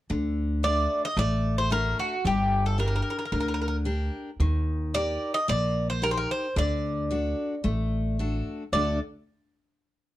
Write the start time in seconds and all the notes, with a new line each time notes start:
0.10 D2 D3
0.63 A3 D4 F#4 D5
1.05 D#5
1.17 A1 A3 D5
1.58 C5
1.70 A3 D4 F#4 A#4
1.99 F#4
2.25 G1 G3 G4
2.66 A4
2.78 D4 G4 A#4
2.88 A#4
2.96 A#4
3.02 A#4
3.10 A#4
3.19 A#4
3.25 A#4
3.32 D2 D3 A#4
3.40 A#4
3.48 A#4
3.54 A#4
3.62 A#4
3.68 A#4
3.85 D4 G4 A#4
4.40 D#2 D#3
4.94 D#4 G4 A#4 D5
5.34 D#5
5.48 A#1 A#3 D5
5.90 C5
6.02 D#4 G4 A#4
6.11 C5
6.17 A#4
6.31 C5
6.56 D2 D3 D5
7.11 D4 F#4 A4
7.64 A1 A3
8.19 D4 F#4 A4
8.72 D2 D3 A3 D4 F#4 A4 D5